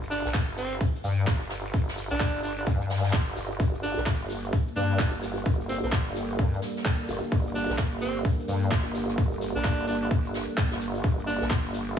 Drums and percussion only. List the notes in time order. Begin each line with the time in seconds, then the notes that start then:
0.03 shaker
0.11 open hi-hat, shaker
0.26 snare, shaker
0.34 kick, snare, clap, tambourine, shaker
0.49 shaker
0.58 open hi-hat, tambourine, shaker
0.72 shaker
0.81 kick, tambourine, shaker
0.96 shaker
1.04 open hi-hat, tambourine, shaker
1.19 shaker
1.27 kick, snare, clap, tambourine, shaker
1.42 shaker
1.50 snare, open hi-hat, tambourine, shaker
1.65 shaker
1.73 kick, tambourine, shaker
1.89 snare, tambourine, shaker
1.97 open hi-hat, shaker
2.11 tambourine, shaker
2.20 kick, snare, clap, tambourine, shaker
2.35 shaker
2.43 open hi-hat, tambourine, shaker
2.58 shaker
2.66 kick, tambourine, shaker
2.81 closed hi-hat, shaker
2.90 snare, open hi-hat, tambourine, shaker
2.97 snare, tambourine
3.04 snare, tambourine, shaker
3.09 snare, tambourine
3.13 kick, snare, clap, shaker
3.28 shaker
3.36 open hi-hat, tambourine, shaker
3.51 shaker
3.60 kick, tambourine, shaker
3.75 shaker
3.83 open hi-hat, shaker
3.97 snare, shaker
4.06 kick, snare, clap, tambourine, shaker
4.21 shaker
4.30 open hi-hat, tambourine, shaker
4.44 shaker
4.53 kick, tambourine, shaker
4.68 shaker
4.76 open hi-hat, tambourine, shaker
4.91 shaker
4.99 kick, snare, clap, tambourine, shaker
5.14 shaker
5.23 open hi-hat, tambourine, shaker
5.37 closed hi-hat, shaker
5.45 kick, tambourine, shaker
5.61 shaker
5.69 open hi-hat, tambourine, shaker
5.84 shaker
5.92 kick, snare, clap, tambourine, shaker
6.07 shaker
6.16 open hi-hat, tambourine, shaker
6.31 shaker
6.39 kick, tambourine, shaker
6.53 closed hi-hat, shaker
6.62 snare, open hi-hat, tambourine, shaker
6.77 snare, shaker
6.85 kick, snare, clap, tambourine, shaker
7.00 shaker
7.08 open hi-hat, tambourine, shaker
7.24 shaker
7.32 kick, tambourine, shaker
7.47 shaker
7.55 open hi-hat, shaker
7.69 snare, shaker
7.78 kick, snare, clap, tambourine, shaker
7.93 shaker
8.01 open hi-hat, tambourine, shaker
8.17 shaker
8.25 kick, tambourine, shaker
8.40 shaker
8.48 open hi-hat, tambourine, shaker
8.63 shaker
8.71 kick, snare, clap, tambourine, shaker
8.86 shaker
8.95 open hi-hat, tambourine, shaker
9.09 closed hi-hat, shaker
9.18 kick, tambourine, shaker
9.33 shaker
9.41 open hi-hat, tambourine, shaker
9.56 shaker
9.64 kick, snare, clap, tambourine, shaker
9.79 shaker
9.87 open hi-hat, tambourine, shaker
10.03 shaker
10.11 kick, tambourine, shaker
10.25 closed hi-hat, shaker
10.34 snare, open hi-hat, tambourine, shaker
10.49 shaker
10.57 kick, clap, shaker
10.72 snare, tambourine, shaker
10.81 open hi-hat, shaker
10.95 tambourine, shaker
11.03 kick, tambourine, shaker
11.19 shaker
11.27 open hi-hat, shaker
11.42 snare, shaker
11.50 kick, snare, clap, tambourine, shaker
11.65 shaker
11.74 open hi-hat, tambourine, shaker
11.89 shaker